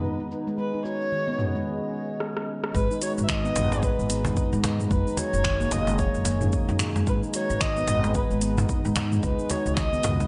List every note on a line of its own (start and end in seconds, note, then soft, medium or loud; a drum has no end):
0.00 0.56 G#3 medium
0.00 0.56 D#4 medium
0.00 0.31 B4 medium
0.00 0.56 B4 medium
0.00 0.54 A#5 medium
0.04 shaker soft
0.20 0.30 D#4 medium
0.31 shaker medium
0.47 0.57 G#3 medium
0.47 shaker soft
0.58 0.67 G#3 medium
0.58 2.72 C#4 medium
0.58 2.72 G#4 medium
0.58 0.83 B4 medium
0.58 2.72 D#5 medium
0.58 shaker soft
0.74 0.84 D#4 medium
0.85 0.94 F#4 medium
0.85 1.62 C#5 loud
0.85 shaker medium
1.01 shaker soft
1.12 1.27 D#3 medium
1.12 shaker soft
1.28 1.38 B3 loud
1.39 mid tom medium
1.39 shaker medium
1.55 1.66 G#3 medium
1.55 shaker soft
2.20 cross-stick medium
2.37 cross-stick medium
2.64 cross-stick medium
2.74 2.84 G#1 loud
2.74 2.84 G#3 medium
2.74 4.89 G#3 medium
2.74 4.89 D#4 medium
2.74 4.89 B4 medium
2.74 3.00 B4 medium
2.74 7.03 A#5 medium
2.74 kick loud
2.74 shaker soft
2.91 3.01 D#4 medium
2.91 shaker soft
3.02 3.11 F#4 medium
3.02 3.12 C#5 loud
3.02 closed hi-hat medium
3.02 shaker medium
3.18 3.49 G#1 medium
3.18 shaker soft
3.24 3.31 E5 medium
3.29 3.44 D#3 medium
3.29 3.85 D#5 loud
3.29 finger snap medium
3.29 kick loud
3.29 cajon slap medium
3.29 shaker soft
3.45 3.55 B3 medium
3.45 shaker soft
3.56 3.89 G#1 loud
3.56 cajon slap medium
3.56 closed hi-hat medium
3.56 mid tom medium
3.56 shaker medium
3.72 4.08 G#3 loud
3.72 cajon slap medium
3.72 shaker soft
3.83 4.64 B4 medium
3.83 kick loud
3.83 shaker soft
3.99 4.30 G#1 medium
3.99 shaker soft
4.10 4.25 B3 medium
4.10 closed hi-hat loud
4.10 shaker medium
4.25 4.36 D#4 medium
4.25 cajon bass medium
4.25 mid tom medium
4.25 shaker soft
4.37 kick loud
4.37 shaker soft
4.53 4.84 G#2 loud
4.53 4.63 D#4 medium
4.53 shaker soft
4.64 finger snap medium
4.64 cajon bass loud
4.64 closed hi-hat loud
4.64 shaker medium
4.80 4.90 G#3 medium
4.80 mid tom medium
4.80 shaker soft
4.91 5.01 F#1 loud
4.91 7.05 F#3 medium
4.91 5.00 G#3 medium
4.91 7.05 C#4 medium
4.91 7.05 G#4 medium
4.91 5.19 B4 medium
4.91 kick loud
4.91 shaker soft
5.07 5.17 D#4 medium
5.07 shaker soft
5.17 5.27 F#4 medium
5.17 5.74 C#5 loud
5.17 cajon bass medium
5.17 closed hi-hat medium
5.17 shaker medium
5.33 5.65 F#1 medium
5.33 shaker soft
5.44 5.60 D#3 medium
5.44 finger snap medium
5.44 kick loud
5.44 cajon slap medium
5.44 shaker soft
5.61 5.71 A#3 loud
5.61 shaker soft
5.71 6.05 F#1 loud
5.71 6.01 D#5 loud
5.71 cajon bass medium
5.71 cajon slap medium
5.71 closed hi-hat medium
5.71 mid tom medium
5.71 shaker medium
5.87 6.25 G#3 loud
5.87 cajon slap medium
5.87 shaker soft
5.99 6.80 C#5 medium
5.99 kick loud
5.99 shaker soft
6.14 6.46 F#1 medium
6.14 shaker soft
6.25 6.41 A#3 medium
6.25 cajon bass medium
6.25 closed hi-hat loud
6.25 shaker medium
6.41 6.52 D#4 medium
6.41 mid tom medium
6.41 shaker soft
6.52 kick loud
6.52 shaker soft
6.69 7.00 F#2 loud
6.69 6.79 D#4 medium
6.69 shaker soft
6.79 finger snap medium
6.79 closed hi-hat medium
6.79 mid tom medium
6.79 shaker medium
6.96 7.06 G#3 loud
6.96 cajon slap medium
6.96 shaker soft
7.07 7.17 G#1 loud
7.07 10.27 G#3 medium
7.07 7.16 G#3 medium
7.07 10.27 D#4 medium
7.07 9.21 B4 loud
7.07 7.20 B4 medium
7.07 9.21 A#5 medium
7.07 kick loud
7.07 shaker soft
7.23 7.33 D#4 medium
7.23 shaker soft
7.34 7.43 F#4 medium
7.34 7.62 C#5 loud
7.34 closed hi-hat medium
7.34 shaker medium
7.50 7.81 G#1 medium
7.50 shaker soft
7.61 7.76 D#3 medium
7.61 8.15 D#5 loud
7.61 finger snap medium
7.61 kick loud
7.61 cajon slap medium
7.61 shaker soft
7.77 7.88 B3 loud
7.77 shaker soft
7.87 8.21 G#1 loud
7.87 cajon slap medium
7.87 closed hi-hat medium
7.87 mid tom medium
7.87 shaker medium
8.04 8.41 G#3 medium
8.04 cajon slap medium
8.04 shaker soft
8.15 8.92 B4 medium
8.15 kick loud
8.15 shaker soft
8.31 8.62 G#1 medium
8.31 shaker soft
8.41 8.57 B3 medium
8.41 closed hi-hat medium
8.41 shaker medium
8.58 8.68 D#4 medium
8.58 cajon bass medium
8.58 mid tom medium
8.58 shaker soft
8.69 kick loud
8.69 shaker soft
8.85 9.16 G#2 loud
8.85 8.95 D#4 medium
8.85 shaker soft
8.96 finger snap medium
8.96 cajon bass loud
8.96 closed hi-hat medium
8.96 shaker medium
9.12 9.22 G#3 loud
9.12 mid tom medium
9.12 shaker soft
9.22 9.33 C#2 loud
9.22 10.27 C#3 medium
9.22 9.32 G#3 medium
9.22 9.52 B4 medium
9.22 kick loud
9.22 shaker soft
9.39 9.49 D#4 medium
9.39 shaker soft
9.50 9.59 F#4 medium
9.50 9.76 C#5 loud
9.50 cajon bass medium
9.50 closed hi-hat medium
9.50 shaker medium
9.66 9.97 C#2 medium
9.66 shaker soft
9.77 9.92 D#3 medium
9.77 10.27 D#5 loud
9.77 finger snap medium
9.77 kick loud
9.77 cajon slap medium
9.77 shaker soft
9.93 10.03 B3 medium
9.93 shaker soft
10.03 10.27 C#2 loud
10.03 cajon bass medium
10.03 cajon slap medium
10.03 closed hi-hat medium
10.03 mid tom medium
10.03 shaker medium
10.20 10.27 G#3 loud
10.20 cajon slap medium
10.20 shaker soft